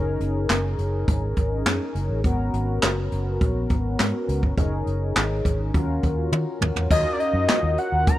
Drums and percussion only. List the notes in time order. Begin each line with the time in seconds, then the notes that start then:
0.20 closed hi-hat
0.49 snare, clap, closed hi-hat
0.78 closed hi-hat
1.08 kick, closed hi-hat
1.36 kick, closed hi-hat
1.66 snare, clap, closed hi-hat
1.95 closed hi-hat
2.24 kick, closed hi-hat
2.54 closed hi-hat
2.82 snare, clap, closed hi-hat
3.12 closed hi-hat
3.41 kick, closed hi-hat
3.69 kick, closed hi-hat
3.99 snare, clap, closed hi-hat
4.29 closed hi-hat
4.43 kick
4.58 kick, closed hi-hat
4.87 closed hi-hat
5.16 snare, clap, closed hi-hat
5.45 kick, closed hi-hat
5.74 kick, closed hi-hat
6.03 kick, closed hi-hat
6.32 high tom
6.62 mid tom
6.76 floor tom
6.91 kick, crash
7.20 closed hi-hat
7.49 snare, clap, closed hi-hat
7.78 closed hi-hat
8.07 kick, closed hi-hat